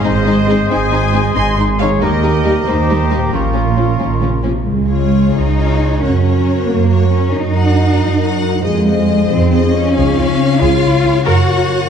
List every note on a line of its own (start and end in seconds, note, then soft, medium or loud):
0.00 1.94 G#2 medium
0.00 0.11 G#3 medium
0.00 1.96 C4 soft
0.00 0.11 C4 medium
0.00 1.91 D#4 soft
0.00 1.96 G#4 medium
0.00 2.01 G#4 soft
0.00 0.46 G#4 medium
0.00 0.69 C5 medium
0.00 0.70 D#5 medium
0.00 1.97 C6 medium
0.04 0.63 G#1 medium
0.04 0.63 G#2 medium
0.04 0.12 D#4 soft
0.24 0.32 G#3 soft
0.24 0.32 C4 soft
0.24 0.35 D#4 medium
0.46 0.54 G#3 medium
0.46 0.54 C4 medium
0.46 0.56 C4 medium
0.46 0.58 D#4 medium
0.46 0.56 G#4 medium
0.69 1.28 G#1 medium
0.69 1.28 G#2 medium
0.69 0.77 G#3 medium
0.69 0.78 C4 medium
0.69 0.79 D#4 medium
0.69 1.32 C5 medium
0.69 1.35 D#5 medium
0.69 1.35 G#5 medium
0.91 0.99 G#3 medium
0.91 0.99 C4 soft
0.91 1.00 D#4 medium
1.12 1.20 G#3 medium
1.12 1.20 C4 medium
1.12 1.22 C4 medium
1.12 1.22 D#4 medium
1.12 1.22 G#4 medium
1.34 1.93 G#1 medium
1.34 1.94 G#2 medium
1.34 1.43 G#3 soft
1.34 1.42 C4 medium
1.34 1.43 D#4 soft
1.34 1.58 D#5 medium
1.34 1.46 G#5 medium
1.34 1.57 C6 medium
1.56 1.64 G#3 soft
1.56 1.64 C4 soft
1.56 1.67 D#4 soft
1.78 1.86 G#3 medium
1.78 1.86 C4 medium
1.78 1.88 C4 medium
1.78 1.89 D#4 medium
1.78 2.04 G#4 medium
1.78 1.88 G#4 medium
1.78 2.00 C#5 medium
1.78 1.88 F5 medium
1.83 3.27 D#3 medium
1.88 3.19 A#3 soft
1.97 2.08 G3 medium
1.97 2.08 A#3 medium
1.97 3.33 G4 soft
2.01 2.59 D#2 medium
2.01 2.60 D#2 medium
2.01 2.10 D#4 medium
2.01 3.32 G4 medium
2.01 2.68 G4 medium
2.01 2.68 A#4 medium
2.01 2.66 D#5 medium
2.01 3.36 A#5 medium
2.22 2.30 G3 soft
2.22 2.30 A#3 soft
2.22 2.32 D#4 medium
2.44 2.53 G3 soft
2.44 2.53 A#3 soft
2.44 2.54 A#3 medium
2.44 2.52 D#4 soft
2.44 2.53 G4 medium
2.67 3.26 D#2 medium
2.67 3.26 D#2 soft
2.67 2.75 G3 soft
2.67 2.75 A#3 soft
2.67 2.75 D#4 soft
2.67 3.33 D#4 medium
2.67 3.33 G4 medium
2.67 3.34 C5 medium
2.89 2.98 G3 soft
2.89 2.98 A#3 soft
2.89 2.97 D#4 soft
3.10 3.18 G3 soft
3.10 3.18 A#3 soft
3.10 3.19 A#3 soft
3.10 3.19 D#4 soft
3.10 3.19 G4 soft
3.16 4.60 A#2 soft
3.20 4.62 A#3 soft
3.25 4.89 C#4 soft
3.30 3.93 A#1 medium
3.30 3.41 F3 soft
3.30 3.40 A#3 soft
3.30 3.41 C#4 soft
3.30 6.00 F4 soft
3.30 4.43 F4 soft
3.30 4.44 A#4 medium
3.34 3.93 A#2 soft
3.34 4.43 C#4 soft
3.34 4.43 F4 soft
3.34 4.46 C#6 soft
3.53 3.62 F3 soft
3.53 3.62 A#3 soft
3.53 3.61 C#4 soft
3.77 3.85 F3 soft
3.77 3.85 A#3 soft
3.77 3.85 C#4 soft
3.77 3.87 C#4 soft
3.77 3.87 F4 soft
3.99 4.59 A#1 soft
3.99 4.22 D#3 medium
3.99 4.07 F3 soft
3.99 4.07 A#3 soft
3.99 4.07 C#4 soft
4.20 4.46 C#3 soft
4.20 4.29 F3 soft
4.20 4.28 A#3 soft
4.20 4.30 C#4 soft
4.43 4.67 C3 soft
4.43 4.51 F3 soft
4.43 4.51 A#3 soft
4.43 4.51 C#4 soft
4.43 4.53 C#4 soft
4.43 4.53 F4 soft
4.67 5.26 C#2 medium
4.67 6.02 C#3 soft
4.67 5.30 G#3 medium
4.67 5.97 F4 soft
4.67 5.97 G#4 soft
4.88 7.34 C#4 soft
4.88 5.54 F4 soft
4.88 5.54 G#4 soft
4.88 5.54 C#5 soft
5.34 5.93 C#2 soft
5.34 6.01 D#4 medium
5.34 6.02 F5 soft
5.55 5.99 F4 soft
5.55 5.99 G#4 soft
5.55 6.00 C#5 soft
5.55 7.34 C#5 soft
5.79 6.02 G#4 soft
5.99 7.32 F#2 soft
5.99 6.59 F#2 medium
5.99 6.66 C#4 medium
5.99 6.20 F#4 soft
5.99 8.63 F#4 soft
5.99 8.60 A#4 soft
5.99 6.20 A#4 soft
6.03 6.22 C#5 soft
6.21 7.54 F#3 soft
6.21 6.86 F#4 soft
6.21 6.87 A#4 soft
6.21 6.87 C#5 soft
6.46 6.88 F#4 soft
6.67 7.25 F#2 medium
6.67 7.11 A#3 medium
6.67 7.99 A#4 soft
6.89 7.32 F#4 soft
6.89 7.76 F#4 soft
6.89 7.32 A#4 soft
6.89 7.32 C#5 soft
7.10 8.41 A#3 soft
7.10 7.32 C#4 medium
7.33 8.66 F#2 soft
7.33 7.91 F#2 medium
7.33 8.64 D#4 medium
7.53 8.66 F#3 soft
7.53 8.19 F#4 soft
7.53 8.17 A#4 soft
7.53 8.19 F#5 soft
7.77 8.20 F#4 soft
7.99 8.56 F#2 medium
7.99 8.66 A#4 soft
8.18 8.63 F#4 soft
8.18 8.66 F#4 soft
8.18 8.62 A#4 soft
8.18 8.64 F#5 soft
8.42 8.66 A#3 soft
8.62 9.97 F2 medium
8.62 9.22 F2 medium
8.62 9.28 G#3 medium
8.62 11.25 F4 medium
8.62 8.84 G#4 soft
8.62 8.83 C5 soft
8.62 9.92 D#5 medium
8.62 8.86 D#5 medium
8.84 11.28 G#3 soft
8.84 9.50 G#4 medium
8.84 9.49 C5 soft
8.88 9.50 D#5 soft
9.09 9.74 D#4 soft
9.30 9.88 F2 medium
9.30 9.72 C4 medium
9.30 9.98 C5 medium
9.51 9.94 G#4 medium
9.51 10.38 G#4 soft
9.51 9.94 C5 medium
9.51 9.94 D#5 medium
9.73 10.59 C#4 medium
9.73 9.98 D#4 medium
9.95 10.05 C#2 medium
9.95 11.29 C#3 medium
9.95 10.15 G#4 medium
9.95 11.89 C#5 medium
9.95 11.22 F5 medium
10.17 10.26 C#2 soft
10.17 11.89 C#4 medium
10.17 10.25 F4 soft
10.40 11.05 G#4 medium
10.59 10.69 C#2 medium
10.59 11.26 F4 medium
10.59 10.80 G#4 medium
10.83 10.92 C#2 medium
10.83 10.91 F4 medium
10.83 11.89 C#5 medium
11.04 11.13 C#2 medium
11.04 11.12 C#4 medium
11.04 11.29 G#4 medium
11.25 11.89 F#2 medium
11.25 11.35 F#2 medium
11.25 11.89 F#4 medium
11.25 11.46 A#4 medium
11.25 11.89 A#4 medium
11.25 11.89 F#5 medium
11.48 11.57 F#2 medium
11.48 11.89 A#3 medium
11.48 11.56 F#4 medium
11.70 11.89 F#4 soft